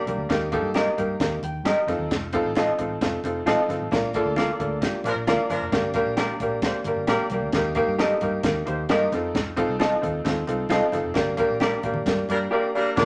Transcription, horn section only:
5.05 5.13 F3 medium
5.05 5.12 D4 medium
5.05 5.13 A#4 loud
5.50 5.64 F3 medium
5.50 5.64 D4 medium
5.50 5.64 A#4 loud
12.30 12.37 G3 medium
12.30 12.37 D4 medium
12.30 12.37 A#4 loud
12.75 12.90 G3 medium
12.75 12.90 D4 medium
12.75 12.89 A#4 medium
12.97 13.05 D4 loud
12.97 13.05 D5 loud

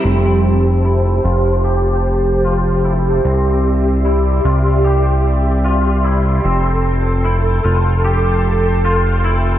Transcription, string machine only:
0.05 6.41 G4 medium
0.05 3.21 C5 medium
0.05 3.21 G5 medium
0.05 3.21 A5 medium
3.25 6.42 D5 medium
3.25 6.41 E5 medium
3.25 9.59 C6 medium
6.44 9.59 A4 medium
6.44 9.59 G5 medium
6.44 9.59 A5 medium

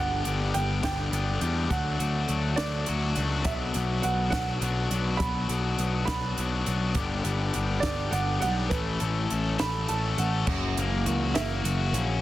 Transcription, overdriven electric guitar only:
0.00 0.55 G2 medium
0.00 0.55 D3 medium
0.00 0.28 G3 medium
0.00 0.26 B3 medium
0.00 0.27 D4 medium
0.00 0.25 G4 medium
0.26 0.83 G3 medium
0.26 0.83 B3 medium
0.26 0.83 D4 medium
0.26 0.82 G4 medium
0.83 1.43 G2 medium
0.83 1.43 D3 medium
0.83 1.10 G3 medium
0.83 1.12 B3 medium
0.83 1.13 D4 medium
0.83 1.13 G4 medium
1.12 1.43 G3 medium
1.12 1.42 B3 medium
1.12 1.42 D4 medium
1.12 1.40 G4 medium
1.41 1.70 G3 medium
1.41 1.70 B3 medium
1.41 1.73 D4 medium
1.41 1.69 G4 medium
1.70 2.29 D3 medium
1.70 2.59 F#3 medium
1.70 2.01 A3 medium
1.70 2.01 D4 medium
1.70 1.99 F#4 medium
2.00 2.58 A3 medium
2.00 2.58 D4 medium
2.00 2.57 F#4 medium
2.57 3.18 D3 medium
2.57 2.86 F#3 medium
2.57 2.86 A3 medium
2.57 2.88 D4 medium
2.57 2.88 F#4 medium
2.86 3.45 F#3 medium
2.86 3.17 A3 medium
2.86 3.17 D4 medium
2.86 3.15 F#4 medium
3.15 3.45 A3 soft
3.15 3.46 D4 medium
3.15 3.47 F#4 medium
3.44 4.35 B2 medium
3.44 4.34 F#3 medium
3.44 3.76 B3 medium
3.44 3.75 D4 medium
3.44 3.74 F#4 medium
3.74 4.33 B3 soft
3.74 4.32 D4 medium
3.74 4.31 F#4 medium
4.32 4.93 B2 medium
4.32 4.61 F#3 medium
4.32 4.62 B3 medium
4.32 4.63 D4 medium
4.32 4.64 F#4 medium
4.61 5.20 F#3 medium
4.61 4.93 B3 medium
4.61 4.92 D4 medium
4.61 4.90 F#4 medium
4.91 5.21 B3 medium
4.91 5.21 D4 medium
4.91 5.22 F#4 medium
5.19 5.78 B2 medium
5.19 6.10 F#3 medium
5.19 5.52 B3 medium
5.19 5.50 D4 medium
5.19 5.48 F#4 medium
5.49 6.09 B3 medium
5.49 6.07 D4 medium
5.49 6.07 F#4 medium
6.08 6.68 B2 medium
6.08 6.37 F#3 medium
6.08 6.39 B3 medium
6.08 6.39 D4 medium
6.08 6.40 F#4 medium
6.38 6.94 F#3 medium
6.38 6.69 B3 medium
6.38 6.67 D4 medium
6.38 6.65 F#4 medium
6.66 6.95 B3 medium
6.66 6.95 D4 medium
6.66 6.94 F#4 medium
6.94 7.54 G2 medium
6.94 7.54 D3 medium
6.94 7.25 G3 medium
6.94 7.25 B3 medium
6.94 7.23 D4 medium
6.94 7.21 G4 medium
7.23 7.83 G3 medium
7.23 7.82 B3 medium
7.23 7.82 D4 medium
7.23 7.81 G4 medium
7.82 8.43 G2 medium
7.82 8.43 D3 medium
7.82 8.11 G3 medium
7.82 8.12 B3 medium
7.82 8.13 D4 medium
7.82 8.14 G4 medium
8.12 8.43 G3 medium
8.12 8.42 B3 medium
8.12 8.42 D4 medium
8.12 8.40 G4 medium
8.41 8.71 G3 medium
8.41 8.70 B3 medium
8.41 8.70 D4 medium
8.41 8.69 G4 medium
8.70 9.29 A2 medium
8.70 9.30 E3 medium
8.70 9.03 A3 medium
8.70 9.01 C#4 medium
8.70 8.99 A4 medium
9.01 9.59 A3 soft
9.01 9.58 C#4 medium
9.01 9.57 A4 medium
9.58 10.19 A2 medium
9.58 9.87 E3 medium
9.58 9.88 A3 medium
9.58 9.89 C#4 medium
9.58 9.90 A4 medium
9.88 10.45 E3 medium
9.88 10.20 A3 medium
9.88 10.19 C#4 medium
9.88 10.17 A4 medium
10.19 10.47 A3 soft
10.19 10.46 C#4 medium
10.19 10.46 A4 medium
10.48 11.94 F#2 medium
10.79 11.33 A#3 medium
11.06 11.64 F#4 medium
11.35 12.21 A#3 medium
11.65 12.21 F#4 medium
11.93 12.21 C#4 medium

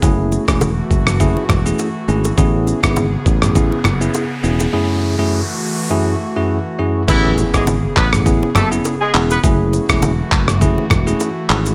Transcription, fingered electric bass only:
0.02 0.37 F#1 loud
0.48 0.80 E1 medium
0.91 1.35 F#1 medium
1.50 1.72 E1 medium
2.08 2.30 G#1 loud
2.38 2.72 A1 loud
2.83 3.15 G#1 medium
3.26 3.70 A1 loud
3.85 4.07 F#1 medium
4.44 4.66 E1 medium
7.08 7.42 A1 loud
7.54 7.86 G#1 medium
7.97 8.41 A1 medium
8.55 8.77 F#1 medium
9.14 9.36 E1 medium
9.44 9.78 F#1 loud
9.89 10.21 E1 medium
10.32 10.76 F#1 medium
10.91 11.13 E1 medium
11.50 11.72 G#1 loud

